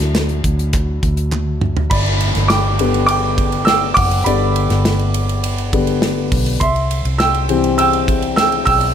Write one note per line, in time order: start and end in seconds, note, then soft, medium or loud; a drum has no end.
0.00 0.41 D2 medium
0.00 0.40 F#3 soft
0.00 0.40 D4 soft
0.00 0.41 E4 medium
0.00 snare soft
0.00 closed hi-hat soft
0.15 snare loud
0.15 clap medium
0.29 closed hi-hat soft
0.44 0.99 D2 medium
0.44 kick medium
0.44 closed hi-hat medium
0.59 closed hi-hat soft
0.73 kick medium
0.73 clap medium
0.73 closed hi-hat medium
1.03 1.87 D2 medium
1.03 kick medium
1.03 closed hi-hat medium
1.17 closed hi-hat soft
1.32 clap medium
1.32 high tom medium
1.61 mid tom medium
1.77 floor tom medium
1.90 2.32 G1 loud
1.90 2.46 D5 medium
1.90 2.51 B5 medium
1.90 kick loud
1.90 crash medium
1.90 downlifter medium
2.06 ride soft
2.21 ride medium
2.35 3.93 G1 medium
2.35 snare soft
2.35 ride soft
2.48 3.05 G5 medium
2.48 3.05 D6 medium
2.48 snare loud
2.48 ride medium
2.79 3.18 D3 medium
2.79 3.18 G3 medium
2.79 3.19 B3 medium
2.79 ride medium
2.94 ride soft
3.06 3.64 G5 medium
3.06 3.68 D6 loud
3.06 ride medium
3.38 kick medium
3.38 ride medium
3.52 ride soft
3.65 3.95 G5 medium
3.65 3.96 E6 loud
3.65 snare loud
3.65 ride medium
3.94 4.24 F#1 medium
3.94 4.24 F#5 medium
3.94 4.26 D6 loud
3.94 kick medium
3.94 open hi-hat medium
3.94 ride medium
4.11 ride soft
4.24 4.67 G1 loud
4.24 4.52 D3 medium
4.24 4.53 G3 medium
4.24 4.65 B3 medium
4.24 5.40 D5 medium
4.24 5.39 B5 medium
4.24 hi-hat pedal medium
4.24 ride medium
4.56 ride medium
4.70 6.28 G1 loud
4.70 snare soft
4.70 ride soft
4.85 snare loud
4.85 ride medium
4.99 ride soft
5.14 ride medium
5.29 ride soft
5.44 ride medium
5.58 ride soft
5.73 5.99 D3 medium
5.73 6.00 G3 soft
5.73 6.00 B3 medium
5.73 kick medium
5.73 ride medium
5.87 ride soft
6.02 snare loud
6.02 ride medium
6.32 6.59 B1 medium
6.32 kick medium
6.32 open hi-hat medium
6.32 ride medium
6.46 ride soft
6.60 7.02 C2 loud
6.60 7.16 E5 medium
6.60 7.21 C6 medium
6.60 kick loud
6.60 hi-hat pedal medium
6.60 ride medium
6.76 ride soft
6.91 ride medium
7.05 8.63 C2 medium
7.05 ride soft
7.18 7.75 G5 medium
7.18 7.76 E6 loud
7.18 snare loud
7.18 ride medium
7.34 ride soft
7.49 7.88 E3 medium
7.49 7.88 G3 medium
7.49 7.88 C4 medium
7.49 ride medium
7.64 ride soft
7.78 8.34 G5 medium
7.78 8.33 E6 loud
7.78 ride medium
7.93 ride soft
8.08 kick medium
8.08 ride medium
8.22 ride soft
8.36 8.45 G5 medium
8.36 8.43 E6 loud
8.36 snare loud
8.36 ride medium
8.52 ride soft
8.65 8.94 B1 medium
8.65 8.94 G5 medium
8.65 8.94 E6 loud
8.65 kick medium
8.65 open hi-hat medium
8.65 ride medium
8.81 ride soft